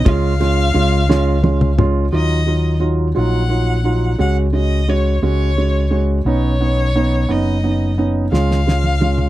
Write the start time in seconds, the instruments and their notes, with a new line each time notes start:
0.05 fingered electric bass C#2, felt piano G#3 C#4 F4, violin F5, kick, ride
0.40 felt piano G#3 C#4 F4, snare, ride
0.74 fingered electric bass C#2, felt piano G#3 C#4 F4, ride
1.09 felt piano G#3 C#4 F4, snare
1.43 felt piano G#3 C#4 F4, high tom
1.61 mid tom
1.78 felt piano G#3 C#4 F4, mid tom
2.12 fingered electric bass D#2, felt piano F#3 D#4 F4, violin D#5
2.46 felt piano F#3 D#4 F4
2.80 felt piano F#3 D#4 F4
3.15 fingered electric bass A#1, felt piano F#3 D#4 F4, violin F#5
3.49 felt piano F#3 D#4 F4
3.84 felt piano F#3 D#4 F4
4.18 fingered electric bass C#2, felt piano G#3 C#4 F#4, violin F#5
4.53 felt piano G#3 C#4 F#4, violin D#5
4.88 felt piano G#3 C#4 F#4, violin C#5
5.22 fingered electric bass C#2, felt piano G#3 C#4 F#4, violin C#5
5.57 felt piano G#3 C#4 F#4
5.90 felt piano G#3 C#4 F#4
6.25 fingered electric bass B1, felt piano B3 C#4 D#4, violin C#5
6.61 felt piano B3 C#4 D#4
6.96 felt piano B3 C#4 D#4
7.29 fingered electric bass F#1, felt piano B3 C#4 D#4, violin D#5
7.64 felt piano B3 C#4 D#4
7.98 felt piano B3 C#4 D#4
8.31 fingered electric bass C#2, felt piano G#3 C#4 F4, violin F5, snare
8.51 snare
8.66 felt piano G#3 C#4 F4, snare
8.84 high tom
9.00 felt piano G#3 C#4 F4, high tom
9.18 mid tom